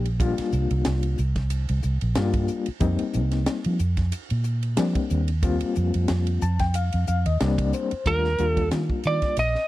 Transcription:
Already playing: fingered electric bass A#1
0.06 ride
0.20 reed electric piano G3 A#3 D4 F4, kick, hi-hat pedal, ride
0.38 muted fingered electric bass stroke, snare, ride
0.52 fingered electric bass C2, hi-hat pedal
0.71 fingered electric bass C2, ride
0.85 fingered electric bass C2, snare, hi-hat pedal, ride
1.03 ride
1.18 fingered electric bass C2, hi-hat pedal
1.36 kick, snare, ride
1.50 hi-hat pedal, ride
1.69 fingered electric bass C2, ride
1.83 fingered electric bass C2, hi-hat pedal
2.01 fingered electric bass A#1, ride
2.15 fingered electric bass G2, reed electric piano G3 A#3 D4 F4, snare, hi-hat pedal, ride
2.34 kick, ride
2.48 hi-hat pedal
2.66 muted fingered electric bass stroke, ride
2.80 fingered electric bass F2, reed electric piano G3 A#3 C4 D#4, kick, hi-hat pedal, ride
2.99 muted fingered electric bass stroke, ride
3.13 fingered electric bass C2, hi-hat pedal
3.31 snare, ride
3.46 snare, hi-hat pedal, ride
3.64 fingered electric bass F3, ride
3.79 fingered electric bass F2, hi-hat pedal
3.97 kick, snare, ride
4.12 hi-hat pedal, ride
4.30 fingered electric bass A#2, ride
4.44 hi-hat pedal
4.63 ride
4.77 fingered electric bass F3, reed electric piano G3 A#3 C4 D4, snare, hi-hat pedal, ride
4.95 kick, ride
5.10 fingered electric bass D#2, hi-hat pedal
5.28 ride
5.43 reed electric piano G3 A#3 C4 F4, kick, hi-hat pedal, ride
5.61 muted fingered electric bass stroke, ride
5.75 fingered electric bass F2, hi-hat pedal
5.94 fingered electric bass F2, ride
6.08 fingered electric bass F2, snare, hi-hat pedal, ride
6.27 ride
6.41 fingered electric bass F2, reed electric piano A5, hi-hat pedal
6.59 reed electric piano G5, kick, snare, ride
6.74 reed electric piano F5, hi-hat pedal, ride
6.92 fingered electric bass F2, ride
7.07 fingered electric bass F2, reed electric piano F5, hi-hat pedal
7.26 fingered electric bass D#2, reed electric piano D#5, ride
7.40 fingered electric bass C2, reed electric piano G3 A#3 C4 D4 D5, snare, hi-hat pedal, ride
7.58 kick, ride
7.73 reed electric piano C5, hi-hat pedal
7.91 muted fingered electric bass stroke, ride
8.06 fingered electric bass D#2, reed electric piano G3 A3 D4 F4, lead electric guitar A#4, kick, hi-hat pedal, ride
8.24 snare
8.38 fingered electric bass D#2, reed electric piano G3 A#3 D4 F4, hi-hat pedal, ride
8.50 lead electric guitar A4
8.57 kick, ride
8.71 fingered electric bass D#3, snare, hi-hat pedal, ride
8.90 kick
9.04 fingered electric bass D#3, lead electric guitar D5, hi-hat pedal, ride
9.22 kick, snare, ride
9.37 fingered electric bass A#1, lead electric guitar D#5, hi-hat pedal, ride
9.55 snare

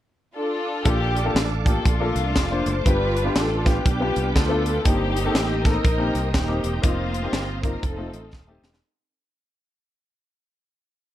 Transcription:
0.36 string section D4 F4 A4
0.85 fingered electric bass A#1, upright piano A#2 A#3 D4 F4 A4, string section D4 G4, tonewheel organ A4 F5 A5 D6, kick, closed hi-hat
1.16 closed hi-hat
1.24 upright piano A#3 D4 F4 A4
1.35 fingered electric bass A1, snare, closed hi-hat
1.65 upright piano A#3 D4 F4 G4, string section A4, kick, closed hi-hat
1.85 fingered electric bass A#1, string section A3 D4 F4, kick, closed hi-hat
2.00 upright piano A#3 D4 F4 A4
2.16 fingered electric bass C2, closed hi-hat
2.36 fingered electric bass F1, kick, snare, closed hi-hat
2.50 upright piano A#3 D4 F4 C5
2.66 fingered electric bass F#1, string section C5, closed hi-hat
2.85 fingered electric bass G1, upright piano G2 B3 D4 F4 G4, string section D4 F4 B4, tonewheel organ B4 G5, kick, closed hi-hat
3.17 closed hi-hat
3.24 upright piano B3 D4 F4 G4
3.35 fingered electric bass A1, string section A4, snare, closed hi-hat
3.65 upright piano B3 D4 F4 G4, string section G4, kick, snare, closed hi-hat
3.85 fingered electric bass B1, string section B3 D4 G4, kick, closed hi-hat
4.00 upright piano B3 D4 F4 G4
4.16 fingered electric bass C2, closed hi-hat
4.35 fingered electric bass D2, string section D4 F4 A4, kick, snare, closed hi-hat
4.49 upright piano B3 D4 F4 A4
4.66 closed hi-hat
4.84 fingered electric bass G1, upright piano G2 A#3 C4 D#4 G4, string section A#3 D#4 G4, tonewheel organ C5 G5 A#5 D#6, kick, closed hi-hat
5.17 closed hi-hat
5.24 upright piano A#3 C4 D#4 A4
5.35 fingered electric bass A1, snare, closed hi-hat
5.64 upright piano A#3 C4 D#4 A4, string section D#4 A#4, kick, snare, closed hi-hat
5.84 fingered electric bass A#1, kick, closed hi-hat
5.98 upright piano A#3 C4 D#4 G4
6.15 fingered electric bass C2, closed hi-hat
6.34 fingered electric bass D#1, string section A#3 D#4 G4, kick, snare, closed hi-hat
6.48 upright piano A#3 C4 D#4 G4
6.64 fingered electric bass E1, closed hi-hat
6.82 fingered electric bass F1, upright piano A#3 C4 D#4 F4, string section A#3 C4 F4, tonewheel organ F5 D#6, kick, closed hi-hat
7.14 closed hi-hat
7.22 upright piano A#3 C4 D#4 G4
7.32 fingered electric bass G1, snare, closed hi-hat
7.63 upright piano A#3 C4 D#4 F4, string section A#4, kick, closed hi-hat
7.83 fingered electric bass F1, string section C4 D#4 A4, tonewheel organ F5 A5, kick, closed hi-hat
7.97 upright piano A3 C4 D#4 F4
8.13 fingered electric bass A1, closed hi-hat
8.33 fingered electric bass D#1, kick, snare
8.47 upright piano A3 C4 D#4 G4
8.64 snare
8.74 snare

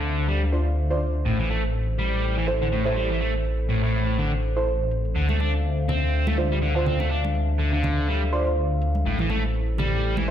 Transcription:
Already playing: detuned saw bass D2, overdriven electric guitar D3, analog synth pad D4 A4 C5 E5 F5
0.03 closed hi-hat
0.17 closed hi-hat
0.28 overdriven electric guitar G3, closed hi-hat
0.52 synth stab D4 F4 C5, closed hi-hat
0.66 closed hi-hat
0.76 closed hi-hat
0.90 synth stab D4 F4 C5
1.01 closed hi-hat
1.15 closed hi-hat
1.25 detuned saw bass A1, overdriven electric guitar A2, analog synth pad E4 A4, closed hi-hat
1.39 overdriven electric guitar E3
1.50 overdriven electric guitar A3, closed hi-hat
1.64 closed hi-hat
1.74 closed hi-hat
1.99 overdriven electric guitar G3, closed hi-hat
2.13 closed hi-hat
2.23 closed hi-hat
2.37 overdriven electric guitar E3
2.47 synth stab E4 A4 C5, closed hi-hat
2.61 overdriven electric guitar D3, closed hi-hat
2.72 overdriven electric guitar A2, closed hi-hat
2.86 overdriven electric guitar A2, synth stab E4 A4 C5
2.96 overdriven electric guitar G3, closed hi-hat
3.10 overdriven electric guitar E3, closed hi-hat
3.20 overdriven electric guitar A3, closed hi-hat
3.45 closed hi-hat
3.59 closed hi-hat
3.69 overdriven electric guitar A2, closed hi-hat
3.83 overdriven electric guitar A2
3.94 closed hi-hat
4.08 closed hi-hat
4.18 overdriven electric guitar D3, closed hi-hat
4.43 closed hi-hat
4.56 synth stab E4 A4 C5, closed hi-hat
4.67 closed hi-hat
4.91 closed hi-hat
5.05 closed hi-hat
5.16 detuned saw bass D2, overdriven electric guitar D3, analog synth pad D4 A4 E5 F5, closed hi-hat
5.29 overdriven electric guitar A3, high conga
5.40 overdriven electric guitar D4, closed hi-hat, high bongo
5.54 closed hi-hat
5.64 closed hi-hat
5.89 overdriven electric guitar C4, closed hi-hat, high bongo, low conga
6.03 closed hi-hat
6.13 closed hi-hat
6.27 overdriven electric guitar A3, high conga
6.38 synth stab D4 F4 C5, closed hi-hat
6.52 overdriven electric guitar G3, closed hi-hat
6.62 overdriven electric guitar D3, closed hi-hat
6.76 overdriven electric guitar D3, synth stab D4 F4 C5
6.86 overdriven electric guitar C4, closed hi-hat, low conga
7.00 overdriven electric guitar A3, high bongo
7.11 overdriven electric guitar D4, closed hi-hat
7.24 high conga
7.35 closed hi-hat
7.49 closed hi-hat
7.60 overdriven electric guitar D3, closed hi-hat
7.73 overdriven electric guitar D3
7.83 closed hi-hat, high bongo, low conga
7.98 closed hi-hat
8.08 overdriven electric guitar G3, closed hi-hat
8.33 synth stab D4 F4 C5, closed hi-hat
8.47 closed hi-hat
8.57 closed hi-hat
8.82 closed hi-hat
8.95 closed hi-hat, high conga
9.06 detuned saw bass A1, overdriven electric guitar A2, analog synth pad E4 C5, closed hi-hat
9.19 overdriven electric guitar E3, high conga
9.30 overdriven electric guitar A3, closed hi-hat, high bongo
9.44 closed hi-hat
9.55 closed hi-hat
9.78 overdriven electric guitar G3, closed hi-hat, high bongo, low conga
9.93 closed hi-hat
10.03 closed hi-hat
10.17 overdriven electric guitar E3, high conga

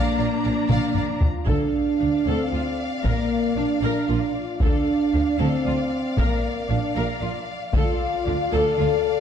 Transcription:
Already playing: viola section A#3, cello section D4, violin section D5 F5 A#5
0.18 double bass section A#1, violin section D5 F5
0.45 double bass section A#1, french horn section F3 D4, violin section D5 F5
0.69 double bass section A#1, french horn section D4, violin section D5 F5, taiko mid
0.95 double bass section A#1, violin section D5 F5, taiko low-mid
1.21 french horn section F3 D4 F4, taiko low
1.47 cello section D2, double bass section D2, french horn section D4, viola section A4, violin section D5 F5, taiko
2.00 cello section D2, double bass section D2, viola section D4
2.26 double bass section D2, cello section D2, french horn section C4, viola section A4
2.52 double bass section D2, cello section D2, viola section F4
3.04 double bass section A#1, cello section A#2, french horn section A#3, viola section A#4, taiko
3.56 double bass section A#1, cello section A#2, french horn section D4, viola section D4
3.83 double bass section A#1, cello section A#2, french horn section D4, viola section A#4
4.09 double bass section A#1, cello section A#2, viola section F4
4.35 french horn section F4
4.61 double bass section D2, cello section D3, french horn section D4, viola section A4, violin section D5 F5, taiko
5.14 double bass section D2, cello section D3, viola section D4
5.39 double bass section D2, cello section D3, french horn section C4, viola section A4
5.66 double bass section D2, cello section D3, viola section F4
6.17 double bass section A#1, cello section A#2, french horn section A#3, viola section A#4, taiko
6.69 double bass section A#1, cello section A#2, french horn section D4, viola section D4
6.96 double bass section A#1, cello section A#2, viola section A#4
7.22 double bass section A#1, cello section A#2, viola section F4
7.73 double bass section D2, cello section D3, french horn section F4, viola section A4, violin section D5 F5, taiko
8.26 double bass section D2, cello section D3, viola section D4
8.52 double bass section D2, cello section D3, viola section A4, french horn section A4
8.78 double bass section D2, cello section D3, viola section F4

